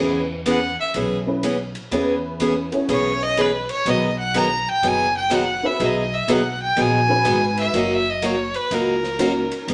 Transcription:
Already playing: E2 E3 B3 C#4 E4
0.00 C#4 G#4 B4
0.46 E3 B3 C#4 G#4, kick, hi-hat pedal, ride
0.50 F#5
0.80 E5
0.94 B1 E3 B3 C#4 G#4, kick, ride
1.26 B3 C#4 E4 G#4 B4
1.43 E3 B3 C#4 G#4, kick, hi-hat pedal, ride
1.75 ride
1.91 E2 E3 B3 C#4 E4 G#4 B4, kick, ride
2.40 E3 B3 C#4 G#4, kick, hi-hat pedal, ride
2.72 B3 C#4 E4 G#4 C#5, ride
2.88 B1 E3 B3 C#4 G#4, kick, ride
2.92 C#5
3.23 D#5
3.37 E3 B3 C#4 G#4, kick, hi-hat pedal, ride
3.41 B4
3.69 C#5, ride
3.85 B1 B2 D#3 F#3 B3 D#4 G#4 D#5, kick, ride
4.19 F#5
4.34 B2 D#3 F#3 B3 D#4 G#4 A#5, kick, hi-hat pedal, ride
4.69 G5
4.82 F#1 B2 D#3 F#3 B3 D#4 G#4, kick, ride
4.87 G#5
5.17 G5
5.30 B2 D#3 F#3 B3 D#4 G#4, kick, hi-hat pedal, ride
5.35 F#5
5.63 B3 D#4 F#4 G#4 B4 E5
5.80 B1 B2 D#3 F#3 B3 D#4 G#4, kick, ride
5.84 D#5
6.14 E5
6.28 B1 B2 D#3 F#3 B3 D#4 G#4, kick, hi-hat pedal, ride
6.32 F#5
6.63 G5
6.76 A#1 B2 D#3 F#3 B3 D#4 G#4, kick, ride
6.80 G#5
7.08 B3 D#4 F#4 G#4 B4
7.24 G#1 B2 D#3 F#3 B3 D#4 G#4, kick, hi-hat pedal, ride
7.57 E5, ride
7.74 F#1 F#3 A#3 D#4 F#4, kick, ride
7.78 D#5
7.94 E5
8.10 D#5
8.22 F#3 A#3 D#4 F#4 C#5, kick, hi-hat pedal, ride
8.54 B4, ride
8.71 C#2 F#3 A#3 D#4 F#4 A#4, kick, ride
9.03 snare
9.18 F#3 A#3 C#4 D#4 F#4 A#4, kick, hi-hat pedal, ride
9.51 ride
9.68 E1 E3 B3 C#4 G#4, kick, ride

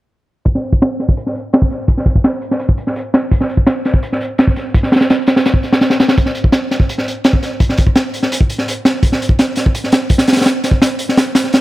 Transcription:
0.45 kick, closed hi-hat
0.55 snare
0.63 closed hi-hat
0.73 kick
0.82 snare, closed hi-hat
0.99 snare, closed hi-hat
1.09 kick
1.17 closed hi-hat
1.26 snare
1.35 closed hi-hat
1.53 snare, closed hi-hat
1.62 kick
1.71 snare, closed hi-hat
1.88 kick, closed hi-hat
1.97 snare
2.06 kick, closed hi-hat
2.16 kick
2.24 snare, closed hi-hat
2.42 closed hi-hat
2.51 snare
2.59 closed hi-hat
2.69 kick
2.78 closed hi-hat
2.87 snare
2.96 closed hi-hat
3.14 snare, closed hi-hat
3.31 kick, closed hi-hat
3.41 snare
3.49 closed hi-hat
3.57 kick
3.67 snare, closed hi-hat
3.85 snare, closed hi-hat
3.94 kick
4.03 closed hi-hat
4.12 snare
4.21 closed hi-hat
4.38 snare, closed hi-hat
4.47 kick
4.56 snare, closed hi-hat
4.74 kick, closed hi-hat
4.83 snare
4.92 snare, closed hi-hat
4.96 snare, closed hi-hat
5.01 snare, closed hi-hat
5.10 snare, closed hi-hat
5.27 snare, closed hi-hat
5.36 snare, closed hi-hat
5.45 snare, closed hi-hat
5.54 kick
5.63 snare, closed hi-hat
5.73 snare, closed hi-hat
5.81 snare, closed hi-hat
5.90 snare, closed hi-hat
6.00 snare, closed hi-hat
6.08 snare, closed hi-hat
6.17 kick, closed hi-hat
6.26 snare
6.35 closed hi-hat
6.44 kick
6.52 snare, closed hi-hat
6.71 snare, closed hi-hat
6.80 kick
6.89 closed hi-hat
6.98 snare
7.08 closed hi-hat
7.24 snare, closed hi-hat
7.33 kick
7.43 snare, closed hi-hat
7.60 kick, closed hi-hat
7.69 snare
7.77 kick, closed hi-hat
7.87 kick
7.96 snare, closed hi-hat
8.14 closed hi-hat
8.23 snare
8.32 closed hi-hat
8.41 kick
8.50 closed hi-hat
8.58 snare
8.68 closed hi-hat
8.85 snare, closed hi-hat
9.03 kick, closed hi-hat
9.12 snare
9.22 closed hi-hat
9.29 kick
9.39 snare, closed hi-hat
9.56 snare, closed hi-hat
9.66 kick
9.75 closed hi-hat
9.84 snare
9.92 snare, closed hi-hat
10.10 kick, closed hi-hat
10.18 snare, closed hi-hat
10.27 snare, closed hi-hat
10.33 snare, closed hi-hat
10.36 snare, closed hi-hat
10.41 snare, closed hi-hat
10.45 snare, closed hi-hat
10.64 snare, closed hi-hat
10.71 kick
10.82 snare, closed hi-hat
10.99 closed hi-hat
11.09 snare
11.17 snare, closed hi-hat
11.35 snare, closed hi-hat
11.44 snare
11.53 snare, closed hi-hat

